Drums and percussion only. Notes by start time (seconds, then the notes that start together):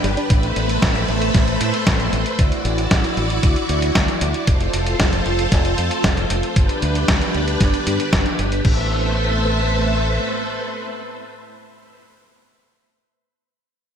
0.04 closed hi-hat
0.17 closed hi-hat
0.30 kick, closed hi-hat
0.43 closed hi-hat
0.56 closed hi-hat
0.69 closed hi-hat
0.82 kick, snare, closed hi-hat
0.95 closed hi-hat
1.08 closed hi-hat
1.22 closed hi-hat
1.34 kick, snare, closed hi-hat
1.48 closed hi-hat
1.61 closed hi-hat
1.74 closed hi-hat
1.87 kick, snare, closed hi-hat
2.00 closed hi-hat
2.13 closed hi-hat
2.26 closed hi-hat
2.39 kick, closed hi-hat
2.52 closed hi-hat
2.65 closed hi-hat
2.78 closed hi-hat
2.91 kick, snare, closed hi-hat
3.04 closed hi-hat
3.17 closed hi-hat
3.30 closed hi-hat
3.43 kick, closed hi-hat
3.56 closed hi-hat
3.69 closed hi-hat
3.82 closed hi-hat
3.95 kick, snare, closed hi-hat
4.08 closed hi-hat
4.21 closed hi-hat
4.34 closed hi-hat
4.47 kick, closed hi-hat
4.61 closed hi-hat
4.73 closed hi-hat
4.87 closed hi-hat
5.00 kick, snare, closed hi-hat
5.13 closed hi-hat
5.26 closed hi-hat
5.39 closed hi-hat
5.52 kick, snare, closed hi-hat
5.65 closed hi-hat
5.78 closed hi-hat
5.91 closed hi-hat
6.04 kick, snare, closed hi-hat
6.17 closed hi-hat
6.30 closed hi-hat
6.43 closed hi-hat
6.56 kick, closed hi-hat
6.69 closed hi-hat
6.82 closed hi-hat
6.95 closed hi-hat
7.08 kick, snare, closed hi-hat
7.22 closed hi-hat
7.35 closed hi-hat
7.48 closed hi-hat
7.61 kick, snare, closed hi-hat
7.74 closed hi-hat
7.87 closed hi-hat
8.00 closed hi-hat
8.13 kick, snare, closed hi-hat
8.26 closed hi-hat
8.39 closed hi-hat
8.52 closed hi-hat
8.65 kick, crash